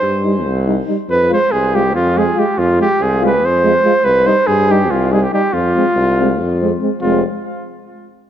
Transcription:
0.00 0.47 G2 medium
0.00 0.26 C5 loud
0.24 0.34 G3 medium
0.24 0.32 D#4 medium
0.45 0.79 C2 loud
0.67 0.76 G3 medium
0.67 0.75 D#4 medium
0.87 0.96 G3 medium
0.87 0.95 D#4 soft
1.09 1.32 F2 medium
1.09 1.30 B4 loud
1.29 1.40 G#3 medium
1.29 1.37 F4 medium
1.33 1.53 C5 loud
1.52 1.97 C2 medium
1.52 1.77 G#4 loud
1.73 1.83 G#3 medium
1.73 1.82 F4 medium
1.73 1.95 G4 loud
1.95 2.29 F2 loud
1.95 2.19 F4 loud
2.14 2.25 G#3 medium
2.14 2.23 F4 medium
2.14 2.41 G#4 loud
2.35 2.45 G#3 medium
2.35 2.43 F4 medium
2.39 2.60 G4 medium
2.58 2.81 F2 loud
2.58 2.80 F4 loud
2.79 2.88 G#3 medium
2.79 2.87 F4 medium
2.79 3.04 G4 loud
3.00 3.44 C2 medium
3.00 3.24 G#4 loud
3.21 3.32 G#3 medium
3.21 3.29 F4 medium
3.26 3.47 B4 loud
3.42 3.77 F2 loud
3.42 4.06 C5 loud
3.64 3.72 G#3 medium
3.64 3.72 F4 medium
3.84 3.93 G#3 medium
3.84 3.93 F4 medium
4.04 4.28 C2 medium
4.04 4.28 B4 loud
4.26 4.36 G3 medium
4.26 4.35 D#4 medium
4.26 4.48 C5 loud
4.47 4.93 G2 loud
4.47 4.73 G#4 loud
4.70 4.79 G3 medium
4.70 4.78 D#4 medium
4.70 4.92 G4 loud
4.91 5.26 C2 loud
4.91 5.14 F4 medium
5.12 5.21 G3 medium
5.12 5.20 D#4 medium
5.12 5.25 G#4 medium
5.23 5.33 G4 medium
5.33 5.41 G3 medium
5.33 5.41 D#4 medium
5.33 5.54 G4 loud
5.53 5.77 F2 loud
5.53 6.62 F4 loud
5.76 5.85 G#3 medium
5.76 5.84 C4 medium
5.96 6.41 C2 loud
6.18 6.28 G#3 medium
6.18 6.27 C4 medium
6.40 6.74 F2 loud
6.61 6.71 G#3 medium
6.61 6.70 C4 medium
6.81 6.90 G#3 medium
6.81 6.89 C4 medium
7.01 7.24 F1 loud
7.01 7.24 G#3 medium
7.01 7.23 C4 medium
7.01 7.23 F4 medium

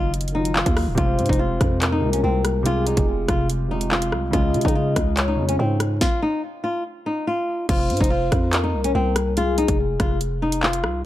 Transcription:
0.00 0.63 F#1 loud
0.00 0.32 D#3 loud
0.00 0.34 F#3 loud
0.00 0.11 F4 medium
0.00 0.37 F4 loud
0.14 closed hi-hat medium
0.21 closed hi-hat medium
0.28 closed hi-hat soft
0.32 0.85 D#3 medium
0.32 0.86 F#3 medium
0.32 0.53 D#4 medium
0.37 0.88 F4 medium
0.45 closed hi-hat medium
0.56 0.95 F4 medium
0.56 clap loud
0.66 0.89 D#2 loud
0.66 kick medium
0.66 closed hi-hat medium
0.77 cross-stick loud
0.77 open hi-hat medium
0.87 0.97 C#1 loud
0.95 1.20 F1 loud
0.95 1.65 C3 loud
0.95 1.66 G#3 medium
0.95 1.27 F4 medium
0.95 1.78 C5 loud
0.95 kick loud
0.95 closed hi-hat medium
1.00 1.68 F4 loud
1.19 1.29 G#2 loud
1.19 closed hi-hat soft
1.26 1.59 F1 loud
1.26 1.38 D#4 medium
1.26 kick medium
1.26 closed hi-hat medium
1.33 closed hi-hat medium
1.39 1.89 F4 medium
1.61 2.04 F2 loud
1.61 kick medium
1.61 cross-stick medium
1.61 closed hi-hat medium
1.82 2.62 A#4 medium
1.82 clap loud
1.82 closed hi-hat medium
1.92 2.11 D#4 medium
2.00 2.23 C2 loud
2.00 2.53 C3 medium
2.00 2.54 G#3 medium
2.05 2.56 F4 medium
2.13 2.22 C#4 medium
2.13 closed hi-hat medium
2.24 2.94 C2 loud
2.24 2.42 C4 medium
2.45 cross-stick medium
2.45 closed hi-hat medium
2.63 3.33 C3 loud
2.63 3.34 G#3 medium
2.63 2.85 F4 loud
2.63 3.45 G#4 loud
2.63 closed hi-hat medium
2.68 3.36 F4 loud
2.87 3.05 D#4 medium
2.87 closed hi-hat medium
2.97 3.27 F1 loud
2.97 kick medium
2.97 closed hi-hat medium
3.29 4.14 F1 loud
3.29 3.47 F4 medium
3.29 kick medium
3.29 cross-stick medium
3.29 closed hi-hat medium
3.50 closed hi-hat medium
3.68 4.21 C3 medium
3.68 4.22 G#3 medium
3.68 3.89 D#4 medium
3.73 4.23 F4 medium
3.81 closed hi-hat medium
3.92 4.31 F4 medium
3.92 clap loud
4.02 closed hi-hat medium
4.12 4.32 C2 loud
4.12 cross-stick medium
4.31 4.56 C#2 loud
4.31 5.01 C#3 loud
4.31 5.02 G#3 medium
4.31 4.63 F4 loud
4.31 5.13 D#5 loud
4.31 kick loud
4.31 closed hi-hat medium
4.36 5.03 F4 loud
4.54 4.64 C#3 loud
4.54 closed hi-hat soft
4.61 4.95 C#3 loud
4.61 4.74 D#4 medium
4.61 kick medium
4.61 closed hi-hat medium
4.68 closed hi-hat medium
4.75 5.25 F4 medium
4.96 5.40 C#2 loud
4.96 kick medium
4.96 cross-stick medium
4.96 closed hi-hat medium
5.17 5.97 C#5 medium
5.17 clap loud
5.17 closed hi-hat medium
5.28 5.46 D#4 medium
5.36 5.58 F2 loud
5.36 5.89 C#3 medium
5.36 5.90 G#3 medium
5.41 5.91 F4 medium
5.48 5.58 C#4 medium
5.48 closed hi-hat medium
5.59 6.00 G#2 loud
5.59 5.78 C4 medium
5.80 cross-stick medium
5.80 closed hi-hat medium
6.01 6.20 F4 loud
6.01 kick loud
6.01 snare medium
6.22 6.41 D#4 medium
6.64 6.83 F4 medium
7.06 7.25 D#4 medium
7.27 7.67 F4 medium
7.69 7.91 F1 loud
7.69 7.99 F4 loud
7.69 8.49 C5 loud
7.69 kick loud
7.69 closed hi-hat medium
7.69 crash loud
7.90 8.00 G#2 loud
7.90 closed hi-hat soft
7.97 8.31 F1 loud
7.97 8.10 D#4 medium
7.97 kick medium
7.97 closed hi-hat medium
8.04 closed hi-hat medium
8.10 8.60 F4 medium
8.32 8.75 F2 loud
8.32 kick medium
8.32 cross-stick medium
8.32 closed hi-hat medium
8.53 9.33 A#4 medium
8.53 clap loud
8.53 closed hi-hat medium
8.64 8.82 D#4 medium
8.74 8.94 C2 loud
8.84 8.94 C#4 medium
8.84 closed hi-hat medium
8.95 9.65 C2 loud
8.95 9.14 C4 medium
9.16 cross-stick loud
9.16 closed hi-hat medium
9.37 9.56 F4 loud
9.37 10.17 G#4 loud
9.37 closed hi-hat medium
9.58 9.77 D#4 medium
9.58 closed hi-hat medium
9.68 9.99 F1 loud
9.68 kick medium
9.68 closed hi-hat medium
10.00 10.85 F1 loud
10.00 10.19 F4 medium
10.00 kick loud
10.00 cross-stick medium
10.00 closed hi-hat medium
10.21 closed hi-hat medium
10.42 10.61 D#4 medium
10.52 closed hi-hat medium
10.63 11.03 F4 medium
10.63 clap loud
10.73 closed hi-hat medium
10.84 11.04 C2 loud
10.84 cross-stick loud

